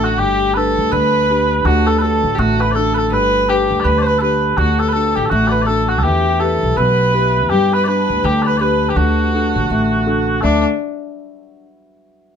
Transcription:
Already playing: upright bass A1, harp D3 A3 D4 F#4
0.04 bagpipes F#4, fiddle F#4
0.18 upright bass G1, harp G3, bagpipes G4, fiddle G4
0.54 harp D4 G4 B4, fiddle A4, bagpipes A4 B4
0.78 upright bass D2
0.92 upright bass D2, harp D3, bagpipes B4, fiddle B4
1.29 harp D4 G4 B4
1.65 upright bass D2, harp D3, bagpipes F#4, fiddle F#4
1.87 bagpipes A4, fiddle A4
1.98 bagpipes A4 B4, fiddle A4
2.02 harp D4 F#4 A4
2.24 upright bass A1
2.35 upright bass A1, harp A3, fiddle F#4 G4
2.39 bagpipes F#4
2.59 fiddle B4, bagpipes B4
2.72 fiddle A4, bagpipes A4 D5
2.76 harp D4 F#4 A4
2.94 fiddle A4, bagpipes A4 B4
3.12 upright bass G1, harp G3, fiddle B4, bagpipes B4
3.47 harp D4 G4 B4, bagpipes G4, fiddle G4
3.71 upright bass D2
3.80 bagpipes D5
3.84 upright bass D2, harp D3, bagpipes B4, fiddle B4
3.98 bagpipes C5 D5
4.07 bagpipes B4, fiddle B4
4.18 harp D4 G4, bagpipes A4 B4, fiddle B4
4.23 harp B4
4.57 upright bass D2, harp D3, bagpipes F#4, fiddle F#4
4.80 bagpipes A4, fiddle A4
4.88 bagpipes B4
4.92 harp D4 F#4 A4, bagpipes A4, fiddle A4
5.16 upright bass A1, bagpipes G4, fiddle G4
5.26 bagpipes A4
5.30 upright bass A1, harp A3, bagpipes F#4, fiddle F#4
5.48 fiddle B4, bagpipes D5
5.52 bagpipes B4
5.62 bagpipes D5
5.66 harp D4 F#4 A4, bagpipes A4, fiddle A4
5.88 fiddle F#4, bagpipes F#4
5.99 bagpipes A4
6.03 upright bass E2, harp E3, fiddle G4, bagpipes G4
6.39 harp E4 G4, fiddle A4, bagpipes A4
6.43 harp B4
6.63 upright bass B1
6.76 upright bass B1, harp B2, fiddle B4, bagpipes B4
7.14 harp E4 G4 B4
7.49 upright bass G2, harp G3, bagpipes G4, fiddle G4
7.73 bagpipes B4, fiddle B4
7.84 harp D4 G4 B4, fiddle B4, bagpipes B4 D5
8.10 upright bass D2
8.24 upright bass D2, harp D3, fiddle G4, bagpipes G4
8.42 bagpipes D5
8.46 fiddle B4, bagpipes B4
8.57 harp D4 G4 B4, fiddle B4, bagpipes B4 D5
8.89 bagpipes G4, fiddle G4
8.96 upright bass D2, harp D3, bagpipes F#4, fiddle F#4
9.34 harp D4 F#4 A4
9.56 upright bass A1
9.70 upright bass A1, harp A3
10.06 harp D4 F#4 A4
10.41 harp D2 A2 F#3 A3, upright bass D2, fiddle D4, bagpipes D4 A4

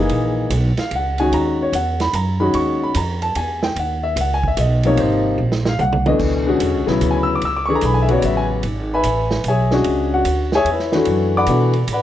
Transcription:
Already playing: grand piano E3 A#3 D#4
0.00 grand piano G#4
0.09 upright bass A#1, ride
0.50 upright bass B1, hi-hat pedal, ride
0.77 grand piano F5, muted upright bass stroke, snare, ride
0.91 upright bass C#2, ride
0.96 grand piano F#5
1.18 grand piano D#3 G#3 C#4 F#4 G#5, ride
1.32 upright bass D#2, grand piano A#5, ride
1.63 grand piano C#5
1.72 upright bass E2, grand piano F#5, hi-hat pedal, ride
2.00 grand piano B5, snare, ride
2.13 upright bass F#2, grand piano A#5, hi-hat pedal, ride
2.40 grand piano D#3 G#3 C#4 F#4 B5
2.54 upright bass D#2, grand piano C#6, ride
2.83 grand piano B5
2.94 upright bass F2, grand piano A#5, hi-hat pedal, ride
3.22 grand piano A5, ride
3.35 upright bass E2, grand piano G#5, ride
3.63 grand piano G5, snare
3.76 upright bass D#2, grand piano F#5, ride
4.03 grand piano E5
4.16 upright bass C#2, hi-hat pedal, ride
4.21 grand piano F#5
4.34 grand piano G#5
4.44 kick
4.48 grand piano E5
4.57 upright bass B1, grand piano D#5, hi-hat pedal, ride
4.83 grand piano C3 F3 A#3 D#4 C#5, ride
4.97 upright bass G#1, grand piano C5, ride
5.38 upright bass A#1
5.52 snare
5.65 grand piano F5, snare
5.79 upright bass C2, grand piano F#5, hi-hat pedal, high tom
5.93 high tom
6.06 grand piano B2 E3 A3 D4 D#5, high tom
6.19 upright bass C#2, kick, crash
6.47 grand piano D3 G#3 C#4 F#4
6.60 upright bass E2, hi-hat pedal, ride
6.74 upright bass C#2
6.86 upright bass B1, grand piano C#3 F#3 B3 E4, snare
7.01 upright bass D2, hi-hat pedal, ride
7.11 grand piano G#5
7.17 grand piano B5
7.23 grand piano E6
7.35 grand piano D6
7.42 upright bass C#2, grand piano E6, ride
7.57 grand piano D6
7.66 grand piano E3 A3 D4 C#6
7.70 grand piano G#4
7.75 grand piano A#5
7.81 upright bass B1, hi-hat pedal, ride
7.85 grand piano B5
7.94 grand piano G#5
8.02 grand piano E5
8.09 grand piano C#3 F#3 B3 F#4, ride
8.13 grand piano C#5
8.18 grand piano D5, hi-hat pedal, ride
8.23 upright bass A1, grand piano E5
8.37 grand piano G#5
8.63 upright bass G#1, ride
8.94 grand piano B4 E5 G#5 B5
9.04 upright bass A1, hi-hat pedal, ride
9.31 snare
9.44 upright bass B1, hi-hat pedal, ride
9.48 grand piano G#4 C#5 E5 G#5
9.71 grand piano G#3 C#4 D4 F#4, snare
9.84 upright bass C#2, ride
10.14 grand piano F#4 F#5
10.25 upright bass D2, hi-hat pedal, ride
10.52 grand piano G#4 C#5 E5 G#5, snare
10.65 upright bass E2, ride
10.72 grand piano E4 B4
10.80 snare
10.92 grand piano E3 A3 D4 F#4, snare
11.05 upright bass F#2, ride
11.37 grand piano D5 F#5 B5 D6
11.46 upright bass B2, grand piano E3 A3 D4 F#4, hi-hat pedal, ride
11.73 ride
11.87 upright bass A2, hi-hat pedal, ride
11.93 grand piano B4 D5 F#5 B5

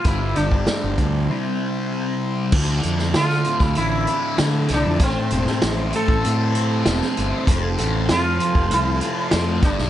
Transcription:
0.04 fingered electric bass G1, distorted electric guitar G2 D3 G3, transistor combo organ D4 C5 G5, sitar E4, kick, closed hi-hat
0.36 fingered electric bass G1, sitar D4, closed hi-hat
0.51 kick
0.67 snare, closed hi-hat
0.84 fingered electric bass G1
0.98 fingered electric bass D2, kick, closed hi-hat
1.29 distorted electric guitar C3 G3 C4, transistor combo organ E4 C5
2.52 fingered electric bass D2, distorted electric guitar D2, transistor combo organ F3 D5 E5 A5, kick, crash
2.83 fingered electric bass F2, distorted electric guitar D3, closed hi-hat
2.99 snare
3.14 fingered electric bass D3, distorted electric guitar A3, sitar F4, snare, closed hi-hat
3.29 snare
3.44 distorted electric guitar A2, closed hi-hat
3.59 fingered electric bass D2, sitar E4, kick, snare
3.75 fingered electric bass A1, distorted electric guitar D3, sitar E4, closed hi-hat
4.07 distorted electric guitar E4, closed hi-hat
4.38 distorted electric guitar D3, fingered electric bass D3, snare, closed hi-hat
4.68 fingered electric bass C2, distorted electric guitar A3, snare, closed hi-hat
4.74 sitar D4
4.86 fingered electric bass F2
4.99 fingered electric bass A1, distorted electric guitar A2, transistor combo organ A4 C5 C6, kick, closed hi-hat
5.04 sitar C4
5.30 fingered electric bass E1, distorted electric guitar C4, closed hi-hat
5.47 snare
5.62 fingered electric bass A1, distorted electric guitar E4, snare, closed hi-hat
5.93 distorted electric guitar A3, sitar A4, closed hi-hat
6.08 fingered electric bass A1, kick
6.24 fingered electric bass A2, distorted electric guitar C4, closed hi-hat
6.55 distorted electric guitar A4, closed hi-hat
6.86 fingered electric bass E1, distorted electric guitar C4, snare, closed hi-hat
7.02 snare
7.16 fingered electric bass G1, distorted electric guitar E4, closed hi-hat
7.47 fingered electric bass F1, distorted electric guitar F2, transistor combo organ A5 C6, kick, closed hi-hat
7.78 fingered electric bass A1, distorted electric guitar A3, closed hi-hat
8.08 fingered electric bass F2, distorted electric guitar C4, sitar F4, snare, closed hi-hat
8.39 distorted electric guitar F3, closed hi-hat
8.55 fingered electric bass F1, kick
8.70 fingered electric bass C2, distorted electric guitar A3, sitar E4, closed hi-hat
9.01 distorted electric guitar F4, closed hi-hat
9.31 fingered electric bass F2, distorted electric guitar A3, snare, closed hi-hat
9.62 fingered electric bass G1, distorted electric guitar G2, sitar D4, transistor combo organ G4 D5 E5 B5, kick, snare, closed hi-hat
9.78 fingered electric bass B1, snare

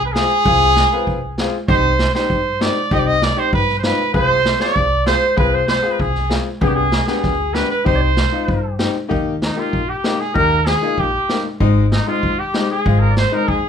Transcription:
Already playing: upright bass C2
0.05 cornet B4
0.13 upright piano C4 F4 G#4, cornet G#4, snare
0.45 upright bass C2, upright piano C4 F4 G#4, kick
0.76 snare
0.93 upright piano C4 F4 B4
1.07 upright bass C2, kick
1.38 upright piano C4 F4 G#4, snare
1.68 upright bass C2, upright piano C4 D#4 G4, cornet C5, kick, snare
1.99 snare
2.15 upright piano C4 D#4 G4, cornet C5, snare
2.30 upright bass G2, kick
2.61 upright piano C4 D#4 G4, cornet D5, snare
2.91 upright bass C2, upright piano C4 D#4 G4, cornet D#5, kick
2.99 cornet D5
3.07 cornet D#5
3.22 cornet D5, snare
3.36 upright piano C4 D#4 G4, cornet C5
3.53 upright bass G2, cornet B4, kick
3.69 snare
3.79 cornet C5
3.83 upright piano C4 D#4 F4, cornet B4, snare
4.13 upright bass C2, upright piano C4 F4 G#4, clarinet C5, cornet C5, kick
4.45 snare
4.59 upright piano C4 F4 G#4, cornet D5, clarinet D5, snare
4.76 upright bass C2, kick
5.06 upright piano C4 F4 G#4, cornet C5, clarinet C5, snare
5.36 upright bass C2, upright piano C4 F4 G#4, cornet B4, clarinet B4, kick
5.54 clarinet C5, cornet C5
5.68 cornet C5, snare
5.83 upright piano C4 F4 G#4
5.91 cornet B4
5.99 upright bass C2, cornet G#4, clarinet G#4, kick
6.15 snare
6.29 upright piano C4 F4 G#4, snare
6.61 upright bass C2, upright piano B3 D4 G4, cornet G#4, clarinet G#4, kick
6.67 cornet G4
6.75 cornet G#4, clarinet G#4
6.92 snare
7.07 upright piano B3 D4 G4, cornet G#4, clarinet G#4, snare
7.23 upright bass D2, kick, snare
7.54 upright piano B3 D4 G4, cornet B4, clarinet B4, snare
7.70 cornet B4, clarinet B4
7.85 upright bass C2, upright piano C4 D#4 G4, clarinet C5, cornet C5, kick
7.96 clarinet D5
8.01 clarinet C5
8.17 snare
8.32 upright piano C4 D#4 F4
8.48 upright bass G2, kick
8.79 upright piano C4 D#4 G4, snare
9.08 upright bass D#2, upright piano A#3 D#4 G4, kick
9.42 clarinet D#4, cornet D#4, snare
9.56 upright piano A#3 D#4 G4, clarinet F4, cornet F4
9.73 upright bass A#1, kick
9.88 clarinet G4, cornet G4
10.04 upright piano A#3 D#4 G4, snare
10.19 clarinet G#4, cornet G#4
10.34 upright bass D#2, upright piano A#3 D#4 G4, clarinet A#4, cornet A#4, kick
10.59 clarinet A#4
10.66 cornet G#4, clarinet G#4, snare
10.82 upright piano A#3 D#4 F4
10.97 upright bass A#1, clarinet G4, cornet G4, kick
11.29 upright piano A#3 D#4 G4, snare
11.60 upright bass G#1, upright piano G#3 C4 D#4, kick
11.91 clarinet D#4, cornet D#4, snare
12.06 upright piano G#3 C4 D#4, clarinet F4, cornet F4
12.23 upright bass D#2, kick
12.38 clarinet G4, cornet G4
12.54 upright piano G#3 C4 D#4, snare
12.70 clarinet G#4, cornet G#4
12.86 upright bass G#1, upright piano G#3 C4 F4, kick
13.00 cornet A#4
13.10 clarinet D5
13.17 cornet C5, clarinet C5, snare
13.31 upright piano G#3 C4 D#4, cornet A#4
13.44 upright bass D#2, cornet G#4, clarinet A#4
13.48 clarinet G#4, kick

